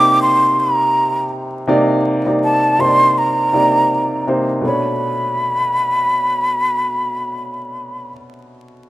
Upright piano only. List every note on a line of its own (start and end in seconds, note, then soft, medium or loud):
0.00 1.67 C3 medium
0.00 1.68 A#3 medium
0.00 1.68 D#4 medium
0.00 1.24 G4 medium
0.00 1.69 D5 medium
1.67 2.21 C3 medium
1.67 2.22 A#3 medium
1.67 2.22 D#4 medium
1.67 2.22 D5 medium
2.26 2.76 C3 medium
2.26 2.76 A#3 medium
2.26 2.76 D#4 medium
2.26 2.77 D5 medium
2.78 3.49 C3 medium
2.78 3.49 A#3 medium
2.78 3.49 D#4 medium
2.78 2.86 C5 medium
2.87 3.53 D5 medium
3.53 4.23 C3 medium
3.53 4.23 A#3 medium
3.53 4.24 D#4 medium
3.53 4.24 D5 medium
4.27 4.62 C3 medium
4.27 4.62 A#3 medium
4.27 4.62 D#4 medium
4.27 4.63 C5 medium
4.61 8.08 B2 medium
4.61 8.10 A3 medium
4.65 8.12 D4 medium
4.65 8.14 C#5 medium